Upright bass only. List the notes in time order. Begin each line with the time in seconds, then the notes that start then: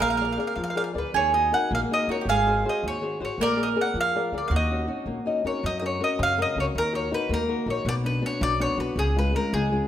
0.00 A#1
0.56 F2
0.95 D2
1.14 D#2
1.71 A#1
2.08 D#2
2.25 G#1
2.83 D#2
3.21 G#1
3.38 A#1
3.94 F2
4.32 D2
4.50 D#2
5.06 A#1
5.44 F2
5.64 F#2
6.19 F#2
6.56 C#2
6.75 D#2
7.29 D#2
7.66 A#1
7.85 B1
8.41 B1
8.77 B1
8.96 C#2
9.53 C#2